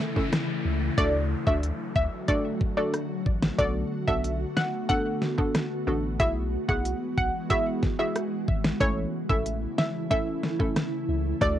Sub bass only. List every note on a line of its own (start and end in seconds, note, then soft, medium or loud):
0.65 0.90 C#2 medium
0.98 1.35 D2 loud
1.47 1.71 D2 loud
1.96 2.08 D2 medium
3.26 3.51 A1 medium
3.59 3.83 B1 loud
4.08 4.45 B1 medium
5.87 6.21 A1 loud
6.20 6.57 B1 loud
6.69 6.93 B1 medium
7.17 7.30 B1 medium
8.48 8.73 G#1 medium
8.80 9.05 A1 loud
9.29 9.66 A1 medium
11.09 11.33 C#2 medium
11.41 11.59 D2 loud